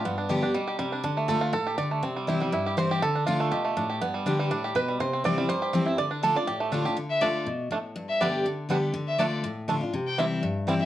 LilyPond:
<<
  \new Staff \with { instrumentName = "Fiddle" } { \time 4/4 \key d \dorian \tempo 4 = 243 r1 | r1 | r1 | r1 |
r1 | r1 | r1 | r8 e''8 d''4 r2 |
r8 e''8 d''4 r2 | r8 e''8 d''4 r2 | r8 g''8 e''4 r4. e''8 | }
  \new Staff \with { instrumentName = "Five-string banjo" } { \time 4/4 \key d \dorian << { f'4. r2 r8 | r4 a'8 f'8 a'4 d''4~ | d''4. r4. c''8 g'8 | a'4 f'2~ f'8 r8 |
r2. b'4 | c''4 d''4 c''4. r8 | d''4 a'8 d''4 r4. | r4 <a d'>8 r4. <a d'>8 r8 |
r4 <g b d'>8 r4. <g b d'>8 r8 | r4 <a d'>8 r4. <a d'>8 r8 | r4 <g c' e'>8 r4. <g c' e'>8 r8 | } \\ { b8 d'8 g'8 d'8 g8 g'8 g8 d'8 | d'8 a4. r8 g'4 a8 | c'8 g8 e'8 g8 e'8 g'4. | r8 d'4 a8 g'8 a8 d'8 g'8 |
b8 g8 d'8 g8 d'8 g'4 g8 | r8 c'4 g4 g'8 c'8 e'8 | r8 d'4. g'8 a8 d'8 g'8 | r1 |
r1 | r1 | r1 | } >> }
  \new Staff \with { instrumentName = "Steel-string acoustic guitar" } { \time 4/4 \key d \dorian << { r4 <d g b g'>8 <b g'>8 r2 | r4 <d a d' f'>4 r2 | r4 <e g c' e'>8 <c' e'>8 r4 <e g c' e'>4 | r4 <d a d' f'>4 r2 |
r4 <d g b g'>4 r2 | r4 <e g c' e'>8 <c' e'>8 r4 <e g c' e'>8 <c' e'>8 | r4 <d a d' f'>8 <d' f'>8 r4 <d a d' f'>8 <d' f'>8 | r4 <d a d' f'>4 r2 |
r4 <d g b g'>4 r4 <d g b g'>4 | r4 <d a d' f'>4 r4 <d a d' f'>8 <d' f'>8 | r4 <e g c' e'>4 r4 <e g c' e'>8 <c' e'>8 | } \\ { g,2 b,4 c4 | d2 a,4 d4 | c2 g,2 | d2 b,4 a,4 |
g,2 a,4 b,4 | c2 g,2 | d2 a,2 | d2 b,4 a,4 |
g,2 d2 | d2 a,2 | c2 g,2 | } >> }
>>